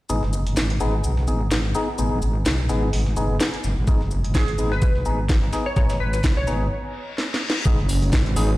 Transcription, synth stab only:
0.10 0.23 B3 medium
0.10 0.23 D#4 medium
0.10 0.23 G#4 medium
0.81 0.94 B3 medium
0.81 0.94 D#4 medium
0.81 0.94 G#4 loud
1.28 1.41 B3 medium
1.28 1.41 D#4 medium
1.28 1.41 G#4 medium
1.75 1.89 B3 medium
1.75 1.89 D#4 medium
1.75 1.89 G#4 medium
1.99 2.19 B3 medium
1.99 2.19 D#4 medium
1.99 2.19 G#4 medium
2.69 2.89 B3 medium
2.69 2.89 D#4 medium
2.69 2.89 G#4 medium
3.17 3.37 B3 medium
3.17 3.37 D#4 medium
3.17 3.37 G#4 medium
3.88 4.01 B3 medium
3.88 4.01 D#4 medium
3.88 4.01 G#4 medium
4.58 4.72 B3 medium
4.58 4.72 D#4 medium
4.58 4.72 G#4 medium
5.06 5.19 B3 medium
5.06 5.19 D#4 medium
5.06 5.19 G#4 medium
5.53 5.66 B3 medium
5.53 5.66 D#4 medium
5.53 5.67 G#4 medium
5.77 5.96 B3 medium
5.77 5.96 D#4 medium
5.77 5.96 G#4 medium
6.47 6.67 B3 medium
6.47 6.67 D#4 medium
6.47 6.67 G#4 medium
7.66 7.79 B3 medium
7.66 7.79 D#4 medium
7.66 7.79 G#4 loud
8.36 8.50 B3 medium
8.36 8.50 D#4 medium
8.36 8.50 G#4 loud

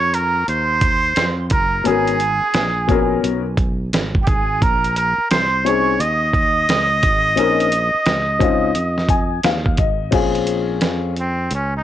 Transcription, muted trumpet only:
0.00 0.16 C#5 loud
0.15 0.48 A#4 medium
0.49 1.35 C5 loud
1.52 1.88 A#4 medium
1.87 3.24 G#4 medium
4.23 4.29 G4 medium
4.23 4.64 G#4 medium
4.63 4.97 A#4 medium
4.97 5.29 A#4 medium
5.31 5.68 C5 loud
5.66 6.02 C#5 medium
6.00 9.45 D#5 loud
11.21 11.51 C4 medium
11.54 11.73 C#4 medium
11.77 11.83 D#4 medium

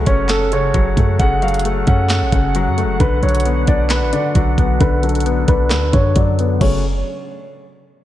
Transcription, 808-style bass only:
0.07 0.72 F#1 loud
0.75 0.96 F#1 loud
0.97 1.19 F#2 loud
1.20 1.85 F#1 loud
1.87 2.23 F#2 loud
2.22 2.32 A1 loud
2.32 2.69 F#1 loud
2.67 2.85 F#2 medium
2.84 2.99 F#1 loud
3.00 3.22 B1 loud
3.23 3.66 B1 loud
3.68 4.04 B1 loud
4.02 4.12 A1 loud
4.35 4.57 B1 loud
4.58 4.80 B1 loud
4.81 5.46 B1 loud
5.48 5.72 B1 loud
5.71 5.92 D2 loud
5.93 6.15 F#2 loud
6.16 6.59 F#2 loud
6.61 7.03 F#1 loud

